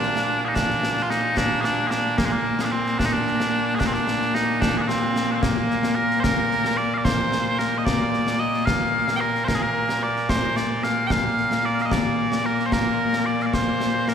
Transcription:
0.00 14.14 A#2 medium
0.00 2.18 A#3 medium
0.00 0.45 D4 loud
0.00 snare soft
0.15 snare medium
0.45 0.55 D#4 medium
0.45 0.49 G#4 medium
0.55 1.03 D4 loud
0.55 concert bass drum medium
0.55 snare medium
0.70 snare soft
0.83 snare medium
0.97 snare soft
1.03 1.10 F4 medium
1.10 1.38 D#4 medium
1.10 snare medium
1.37 1.61 D4 loud
1.37 concert bass drum soft
1.37 snare medium
1.61 1.87 D4 loud
1.61 1.65 G#4 loud
1.61 snare medium
1.87 2.18 D4 medium
1.87 1.91 G#4 medium
1.87 snare medium
2.18 2.25 A#3 medium
2.18 concert bass drum medium
2.18 snare loud
2.25 2.32 G#3 medium
2.32 2.61 A#3 medium
2.59 2.65 G#4 medium
2.59 snare medium
2.65 2.72 D4 medium
2.72 2.99 C4 medium
2.86 snare soft
2.99 3.06 D4 loud
2.99 concert bass drum medium
2.99 snare loud
3.06 3.13 D#4 medium
3.13 3.75 D4 medium
3.27 snare soft
3.40 snare medium
3.75 3.80 G#4 loud
3.80 3.87 D4 loud
3.80 concert bass drum medium
3.80 snare medium
3.87 3.93 C4 medium
3.93 4.35 D4 medium
3.93 snare soft
4.08 snare medium
4.22 snare soft
4.35 4.61 D#4 medium
4.35 snare medium
4.61 4.78 D4 loud
4.61 concert bass drum medium
4.61 snare loud
4.78 4.88 D4 medium
4.78 4.82 G#4 medium
4.88 5.32 C4 medium
4.88 snare medium
5.16 snare medium
5.32 5.42 C4 medium
5.32 5.35 D4 medium
5.42 5.95 A#3 medium
5.42 concert bass drum medium
5.42 snare loud
5.70 snare soft
5.83 snare medium
5.95 6.20 A#4 medium
6.11 snare soft
6.20 6.77 A#4 loud
6.20 6.23 C5 loud
6.24 concert bass drum medium
6.24 snare loud
6.51 snare soft
6.65 snare medium
6.77 6.94 D5 loud
6.94 7.05 D5 medium
6.94 6.98 F5 medium
7.05 7.58 C5 medium
7.05 concert bass drum medium
7.05 snare medium
7.32 snare medium
7.58 7.78 A#4 medium
7.58 snare medium
7.78 7.85 D#5 medium
7.85 8.40 D5 loud
7.85 concert bass drum medium
7.85 snare medium
8.13 snare soft
8.27 snare medium
8.40 8.66 D#5 loud
8.54 snare soft
8.66 9.16 F5 loud
8.66 concert bass drum medium
8.66 snare medium
9.08 snare medium
9.16 9.20 G5 medium
9.20 9.44 A#4 medium
9.35 snare soft
9.44 9.55 A#4 loud
9.44 9.48 C5 loud
9.48 concert bass drum soft
9.48 snare medium
9.55 9.62 G#4 medium
9.62 10.03 A#4 medium
9.89 snare medium
10.03 10.30 D5 medium
10.16 snare soft
10.29 10.56 C5 medium
10.29 concert bass drum medium
10.29 snare medium
10.56 10.84 D5 medium
10.56 snare medium
10.83 11.07 F5 medium
10.83 snare medium
11.07 11.11 G5 loud
11.07 concert bass drum medium
11.07 snare medium
11.11 11.66 F5 loud
11.37 snare soft
11.51 snare medium
11.65 11.82 D5 loud
11.78 11.86 F5 medium
11.78 snare soft
11.86 11.92 D#5 medium
11.91 12.46 D5 medium
11.91 concert bass drum medium
11.91 snare medium
12.32 snare medium
12.46 12.66 A#4 medium
12.59 snare soft
12.66 12.73 C5 medium
12.72 13.26 A#4 medium
12.72 concert bass drum soft
12.72 snare medium
13.13 snare medium
13.26 13.42 D5 medium
13.40 13.46 F5 medium
13.40 snare soft
13.46 13.54 D5 medium
13.53 14.08 C5 medium
13.53 concert bass drum soft
13.53 snare medium
13.81 snare medium
14.08 14.14 A#4 medium
14.08 snare medium

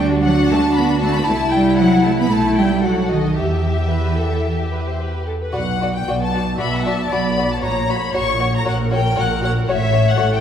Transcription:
0.00 1.24 D2 medium
0.00 0.25 G3 medium
0.00 1.24 D4 medium
0.00 0.22 F#4 medium
0.23 0.34 F#3 medium
0.23 0.75 F#4 medium
0.23 0.49 F#5 medium
0.49 0.60 A3 medium
0.49 0.75 A5 medium
0.74 0.85 B3 medium
0.74 1.27 F#4 medium
0.74 1.01 B5 medium
1.01 1.15 A3 medium
1.01 1.14 A5 medium
1.13 1.28 B3 medium
1.13 1.27 B5 medium
1.25 2.31 C2 medium
1.25 1.36 A3 medium
1.25 2.29 E4 medium
1.25 2.30 E4 medium
1.25 1.52 A5 medium
1.52 1.79 G3 medium
1.52 1.78 G5 medium
1.77 2.05 F#3 medium
1.77 2.03 F#5 medium
2.05 2.10 A3 medium
2.05 2.18 A5 medium
2.19 2.31 B3 medium
2.19 2.31 B5 medium
2.31 3.35 B1 medium
2.31 2.57 A3 medium
2.31 2.82 E4 medium
2.31 2.82 E4 soft
2.31 2.57 A5 medium
2.57 2.84 G3 medium
2.57 2.83 G5 medium
2.83 3.10 F#3 medium
2.83 3.35 F#4 medium
2.83 3.37 A4 soft
2.83 3.09 F#5 soft
3.10 3.37 D#3 medium
3.10 3.37 D#5 soft
3.36 5.33 E2 soft
3.36 5.00 E3 soft
3.36 3.84 G4 soft
3.36 5.29 G4 soft
3.36 5.00 E5 soft
3.90 4.16 B4 soft
4.19 4.46 A4 soft
4.46 4.73 G4 soft
4.73 4.86 B4 soft
4.89 5.01 C5 soft
5.00 5.27 B4 soft
5.27 5.32 A4 soft
5.42 5.54 B4 soft
5.53 6.00 B1 soft
5.53 6.00 B2 soft
5.53 5.61 F#4 soft
5.53 5.61 D5 soft
5.53 5.90 F#5 medium
5.81 5.89 F#4 soft
5.81 5.89 D5 soft
5.94 6.20 G5 medium
6.06 6.53 B1 soft
6.06 6.52 B2 soft
6.06 6.16 F#4 soft
6.06 6.17 D5 soft
6.21 6.59 A5 medium
6.34 6.42 F#4 soft
6.34 6.42 D5 soft
6.58 7.05 B1 medium
6.58 7.04 B2 soft
6.58 6.66 F#4 soft
6.58 6.67 D5 soft
6.58 7.07 E5 medium
6.58 6.72 B5 medium
6.75 6.86 F#5 soft
6.85 6.94 F#4 soft
6.85 6.94 D5 soft
6.85 7.11 A5 medium
7.10 7.57 B1 medium
7.10 7.57 B2 soft
7.10 7.20 F#4 soft
7.10 7.62 D5 soft
7.10 7.20 D5 soft
7.10 7.50 B5 medium
7.37 7.45 F#4 soft
7.37 7.45 D5 soft
7.51 7.56 A5 medium
7.62 8.09 A#1 soft
7.62 8.09 A#2 soft
7.62 7.70 F#4 soft
7.62 8.64 C#5 medium
7.62 7.70 C#5 soft
7.62 7.88 A#5 medium
7.88 7.96 F#4 soft
7.88 7.96 C#5 soft
7.88 8.14 B5 medium
8.13 8.61 A#1 medium
8.13 8.61 A#2 soft
8.13 8.21 F#4 soft
8.13 8.22 C#5 soft
8.13 8.54 C#6 medium
8.40 8.48 F#4 soft
8.40 8.48 C#5 soft
8.55 8.67 A#5 medium
8.65 9.12 A#1 medium
8.65 9.12 A#2 medium
8.65 8.73 F#4 soft
8.65 9.67 A#4 medium
8.65 8.74 C#5 soft
8.65 8.76 F#5 medium
8.91 8.99 F#4 soft
8.91 9.00 C#5 soft
8.91 9.18 G5 medium
9.16 9.64 A#1 soft
9.16 9.64 A#2 soft
9.16 9.24 F#4 soft
9.16 9.25 C#5 soft
9.16 9.42 F#5 medium
9.42 9.50 F#4 soft
9.42 9.51 C#5 soft
9.42 9.51 F#5 medium
9.68 10.15 A1 soft
9.68 10.15 A2 medium
9.68 9.77 F#4 soft
9.68 10.20 C#5 soft
9.68 9.76 C#5 soft
9.68 10.08 E5 medium
9.93 10.01 F#4 soft
9.93 10.01 C#5 soft
10.08 10.34 F#5 medium
10.17 10.41 A1 medium
10.17 10.25 F#4 soft
10.17 10.41 A4 soft
10.17 10.25 C#5 soft
10.22 10.41 A2 medium
10.35 10.41 G5 medium

